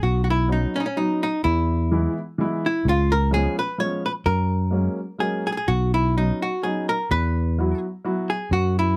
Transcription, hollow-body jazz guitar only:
0, 0, Header, 1, 2, 480
1, 0, Start_track
1, 0, Key_signature, 5, "major"
1, 0, Tempo, 471328
1, 20, Time_signature, 3, 2, 24, 8
1, 9132, End_track
2, 0, Start_track
2, 0, Title_t, "Hollow-body jazz guitar"
2, 0, Program_c, 0, 26
2, 30, Note_on_c, 0, 66, 77
2, 228, Note_off_c, 0, 66, 0
2, 245, Note_on_c, 0, 66, 52
2, 297, Note_off_c, 0, 66, 0
2, 310, Note_on_c, 0, 64, 84
2, 527, Note_off_c, 0, 64, 0
2, 533, Note_on_c, 0, 63, 66
2, 771, Note_on_c, 0, 61, 74
2, 787, Note_off_c, 0, 63, 0
2, 815, Note_on_c, 0, 63, 59
2, 826, Note_off_c, 0, 61, 0
2, 874, Note_on_c, 0, 61, 72
2, 875, Note_off_c, 0, 63, 0
2, 989, Note_on_c, 0, 63, 66
2, 992, Note_off_c, 0, 61, 0
2, 1241, Note_off_c, 0, 63, 0
2, 1253, Note_on_c, 0, 63, 84
2, 1462, Note_off_c, 0, 63, 0
2, 1466, Note_on_c, 0, 64, 80
2, 2162, Note_off_c, 0, 64, 0
2, 2710, Note_on_c, 0, 64, 72
2, 2922, Note_off_c, 0, 64, 0
2, 2944, Note_on_c, 0, 65, 97
2, 3175, Note_on_c, 0, 70, 95
2, 3184, Note_off_c, 0, 65, 0
2, 3393, Note_off_c, 0, 70, 0
2, 3400, Note_on_c, 0, 68, 89
2, 3650, Note_off_c, 0, 68, 0
2, 3654, Note_on_c, 0, 71, 84
2, 3866, Note_off_c, 0, 71, 0
2, 3870, Note_on_c, 0, 73, 85
2, 4126, Note_off_c, 0, 73, 0
2, 4132, Note_on_c, 0, 71, 74
2, 4189, Note_off_c, 0, 71, 0
2, 4337, Note_on_c, 0, 70, 85
2, 5295, Note_off_c, 0, 70, 0
2, 5299, Note_on_c, 0, 68, 63
2, 5557, Note_off_c, 0, 68, 0
2, 5569, Note_on_c, 0, 68, 75
2, 5613, Note_off_c, 0, 68, 0
2, 5626, Note_on_c, 0, 68, 52
2, 5664, Note_off_c, 0, 68, 0
2, 5676, Note_on_c, 0, 68, 68
2, 5783, Note_on_c, 0, 66, 81
2, 5793, Note_off_c, 0, 68, 0
2, 6045, Note_off_c, 0, 66, 0
2, 6049, Note_on_c, 0, 64, 78
2, 6284, Note_off_c, 0, 64, 0
2, 6290, Note_on_c, 0, 63, 69
2, 6538, Note_off_c, 0, 63, 0
2, 6542, Note_on_c, 0, 66, 72
2, 6756, Note_on_c, 0, 68, 62
2, 6770, Note_off_c, 0, 66, 0
2, 7013, Note_off_c, 0, 68, 0
2, 7017, Note_on_c, 0, 70, 85
2, 7241, Note_off_c, 0, 70, 0
2, 7245, Note_on_c, 0, 71, 93
2, 7934, Note_off_c, 0, 71, 0
2, 8451, Note_on_c, 0, 68, 67
2, 8655, Note_off_c, 0, 68, 0
2, 8685, Note_on_c, 0, 66, 84
2, 8937, Note_off_c, 0, 66, 0
2, 8950, Note_on_c, 0, 64, 78
2, 9132, Note_off_c, 0, 64, 0
2, 9132, End_track
0, 0, End_of_file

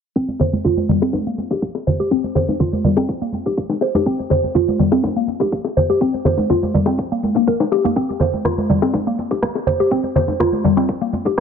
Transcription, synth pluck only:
0, 0, Header, 1, 2, 480
1, 0, Start_track
1, 0, Tempo, 487805
1, 155, Time_signature, 4, 2, 24, 8
1, 11219, End_track
2, 0, Start_track
2, 0, Title_t, "Synth pluck"
2, 0, Program_c, 0, 84
2, 157, Note_on_c, 0, 60, 100
2, 276, Note_off_c, 0, 60, 0
2, 400, Note_on_c, 0, 72, 71
2, 511, Note_off_c, 0, 72, 0
2, 639, Note_on_c, 0, 65, 99
2, 751, Note_off_c, 0, 65, 0
2, 878, Note_on_c, 0, 55, 76
2, 990, Note_off_c, 0, 55, 0
2, 1006, Note_on_c, 0, 60, 74
2, 1112, Note_off_c, 0, 60, 0
2, 1247, Note_on_c, 0, 58, 75
2, 1352, Note_off_c, 0, 58, 0
2, 1489, Note_on_c, 0, 67, 73
2, 1587, Note_off_c, 0, 67, 0
2, 1840, Note_on_c, 0, 72, 72
2, 1951, Note_off_c, 0, 72, 0
2, 1967, Note_on_c, 0, 67, 99
2, 2072, Note_off_c, 0, 67, 0
2, 2078, Note_on_c, 0, 60, 96
2, 2196, Note_off_c, 0, 60, 0
2, 2318, Note_on_c, 0, 72, 71
2, 2430, Note_off_c, 0, 72, 0
2, 2559, Note_on_c, 0, 65, 101
2, 2671, Note_off_c, 0, 65, 0
2, 2800, Note_on_c, 0, 55, 75
2, 2911, Note_off_c, 0, 55, 0
2, 2925, Note_on_c, 0, 60, 75
2, 3031, Note_off_c, 0, 60, 0
2, 3165, Note_on_c, 0, 58, 79
2, 3271, Note_off_c, 0, 58, 0
2, 3406, Note_on_c, 0, 67, 75
2, 3506, Note_off_c, 0, 67, 0
2, 3760, Note_on_c, 0, 72, 77
2, 3871, Note_off_c, 0, 72, 0
2, 3887, Note_on_c, 0, 67, 102
2, 3992, Note_off_c, 0, 67, 0
2, 3999, Note_on_c, 0, 60, 96
2, 4117, Note_off_c, 0, 60, 0
2, 4240, Note_on_c, 0, 72, 70
2, 4351, Note_off_c, 0, 72, 0
2, 4477, Note_on_c, 0, 65, 100
2, 4590, Note_off_c, 0, 65, 0
2, 4717, Note_on_c, 0, 55, 76
2, 4830, Note_off_c, 0, 55, 0
2, 4843, Note_on_c, 0, 60, 78
2, 4950, Note_off_c, 0, 60, 0
2, 5081, Note_on_c, 0, 58, 76
2, 5189, Note_off_c, 0, 58, 0
2, 5323, Note_on_c, 0, 67, 75
2, 5424, Note_off_c, 0, 67, 0
2, 5676, Note_on_c, 0, 72, 76
2, 5789, Note_off_c, 0, 72, 0
2, 5803, Note_on_c, 0, 67, 102
2, 5910, Note_off_c, 0, 67, 0
2, 5914, Note_on_c, 0, 60, 99
2, 6034, Note_off_c, 0, 60, 0
2, 6156, Note_on_c, 0, 72, 75
2, 6269, Note_off_c, 0, 72, 0
2, 6395, Note_on_c, 0, 65, 100
2, 6509, Note_off_c, 0, 65, 0
2, 6635, Note_on_c, 0, 55, 73
2, 6749, Note_off_c, 0, 55, 0
2, 6760, Note_on_c, 0, 60, 75
2, 6869, Note_off_c, 0, 60, 0
2, 7004, Note_on_c, 0, 58, 75
2, 7111, Note_off_c, 0, 58, 0
2, 7243, Note_on_c, 0, 58, 100
2, 7345, Note_off_c, 0, 58, 0
2, 7356, Note_on_c, 0, 70, 99
2, 7424, Note_off_c, 0, 70, 0
2, 7596, Note_on_c, 0, 67, 76
2, 7709, Note_off_c, 0, 67, 0
2, 7724, Note_on_c, 0, 58, 101
2, 7784, Note_off_c, 0, 58, 0
2, 7837, Note_on_c, 0, 60, 101
2, 7956, Note_off_c, 0, 60, 0
2, 8076, Note_on_c, 0, 72, 72
2, 8189, Note_off_c, 0, 72, 0
2, 8317, Note_on_c, 0, 65, 101
2, 8430, Note_off_c, 0, 65, 0
2, 8556, Note_on_c, 0, 55, 74
2, 8669, Note_off_c, 0, 55, 0
2, 8684, Note_on_c, 0, 60, 75
2, 8791, Note_off_c, 0, 60, 0
2, 8924, Note_on_c, 0, 58, 77
2, 9031, Note_off_c, 0, 58, 0
2, 9161, Note_on_c, 0, 67, 74
2, 9263, Note_off_c, 0, 67, 0
2, 9515, Note_on_c, 0, 72, 79
2, 9629, Note_off_c, 0, 72, 0
2, 9644, Note_on_c, 0, 67, 100
2, 9751, Note_off_c, 0, 67, 0
2, 9758, Note_on_c, 0, 60, 98
2, 9876, Note_off_c, 0, 60, 0
2, 9996, Note_on_c, 0, 72, 75
2, 10109, Note_off_c, 0, 72, 0
2, 10233, Note_on_c, 0, 65, 100
2, 10348, Note_off_c, 0, 65, 0
2, 10473, Note_on_c, 0, 55, 76
2, 10588, Note_off_c, 0, 55, 0
2, 10600, Note_on_c, 0, 60, 77
2, 10708, Note_off_c, 0, 60, 0
2, 10838, Note_on_c, 0, 58, 78
2, 10948, Note_off_c, 0, 58, 0
2, 11082, Note_on_c, 0, 67, 74
2, 11184, Note_off_c, 0, 67, 0
2, 11219, End_track
0, 0, End_of_file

